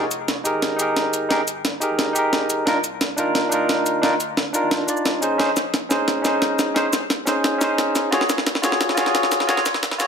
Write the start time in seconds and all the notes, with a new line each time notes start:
Already playing: F1
0.11 closed hi-hat, shaker
0.28 snare, closed hi-hat
0.44 D#4 G4 G#4 A#4, closed hi-hat, shaker
0.54 G#1
0.62 snare, closed hi-hat
0.76 G1 D#4 G4 G#4, closed hi-hat, shaker
0.82 A#4
0.96 snare, closed hi-hat
1.13 closed hi-hat, shaker
1.29 D#4 G4 G#4 A#4, snare, closed hi-hat
1.48 closed hi-hat, shaker
1.65 snare, closed hi-hat
1.80 D#4 G4 G#4 A#4, closed hi-hat, shaker
1.90 G#1
1.99 snare, closed hi-hat
2.13 D#1 D#4 G4 G#4, closed hi-hat, shaker
2.19 A#4
2.33 snare, closed hi-hat
2.50 F1, closed hi-hat, shaker
2.65 C2 D4 D#4 F4 A#4, snare, closed hi-hat
2.84 closed hi-hat, shaker
3.01 snare, closed hi-hat
3.17 D4 D#4 F4 A#4, closed hi-hat, shaker
3.27 D#2
3.35 snare, closed hi-hat
3.49 D2 D4 D#4 F4, closed hi-hat, shaker
3.55 A#4
3.69 snare, closed hi-hat
3.86 closed hi-hat, shaker
4.02 D4 D#4 F4 A#4, snare, closed hi-hat
4.20 closed hi-hat, shaker
4.37 snare, closed hi-hat
4.53 D4 D#4 F4 A#4, closed hi-hat, shaker
4.63 D#2
4.71 snare, closed hi-hat
4.87 D4 D#4 F4 D5, closed hi-hat, shaker
4.97 shaker
5.05 C2, snare, closed hi-hat
5.21 A#1 C#4 D#4 G#4 C5, closed hi-hat, shaker
5.38 A#1 C#4 D#4 G#4 C5, snare, closed hi-hat
5.57 snare, closed hi-hat, shaker
5.74 snare, closed hi-hat
5.89 C#4 D#4 G#4 C5, snare, closed hi-hat, shaker
5.99 C#2
6.08 snare, closed hi-hat
6.22 C2 C#4 D#4 G#4, snare, closed hi-hat, shaker
6.28 C5
6.42 snare, closed hi-hat
6.59 snare, closed hi-hat, shaker
6.74 C#4 D#4 G#4 C5, snare, closed hi-hat
6.93 snare, closed hi-hat, shaker
7.10 snare, closed hi-hat
7.26 C#4 D#4 G#4 C5, snare, closed hi-hat, shaker
7.36 C#2
7.44 snare, closed hi-hat
7.58 G#1 C#4 D#4 G#4, snare, closed hi-hat, shaker
7.64 C5
7.78 snare, closed hi-hat
7.95 A#1, snare, closed hi-hat, shaker
8.11 D#1 F4 F#4 G#4 C#5, snare, closed hi-hat
8.21 snare
8.30 snare, closed hi-hat, shaker
8.38 snare
8.47 snare, closed hi-hat
8.55 snare
8.62 F4 F#4 G#4 C#5, snare, closed hi-hat, shaker
8.72 F#1, snare
8.81 snare, closed hi-hat
8.89 snare
8.95 F1 F4 F#4 G#4, snare, closed hi-hat, shaker
9.00 C#5
9.06 snare
9.15 snare, closed hi-hat
9.23 snare
9.32 snare, closed hi-hat, shaker
9.40 snare
9.47 F4 F#4 G#4 C#5, snare, closed hi-hat
9.57 snare
9.66 snare, closed hi-hat, shaker
9.74 snare
9.83 snare, closed hi-hat
9.91 snare
9.98 F4 F#4 G#4 C#5, snare, closed hi-hat, shaker